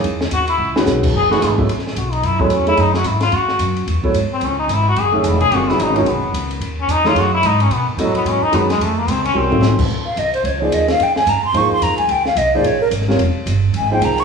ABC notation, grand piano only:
X:1
M:4/4
L:1/8
Q:"Swing" 1/4=219
K:C#m
V:1 name="Grand piano"
z4 z [D,G,CFB]3 | [K:F#dor] z [E,A,DGB]2 [F,B,EAe] z4 | z [F,B,EAc]2 [A,DGce] z4 | z4 z [F,B,EAc] z2 |
z4 z [D,A,Gce]3 | [=D,=G,^B,^E^A] [^D,^G,CF=B]2 [D,G,CFc] z4 | z3 [E,A,DGc] z4 | z2 [F,B,EAd]3 z [D,G,CFB] z |
z4 [=G,CE_G^A] [_G,=C_E=F=A]2 z | [K:Bbdor] z4 z [F,B,EAc]3 | z4 [F,B,EAc]3 z | z3 [F,B,EAc] z3 [G,CFBd] |
z4 z [F,B,EAc]3 |]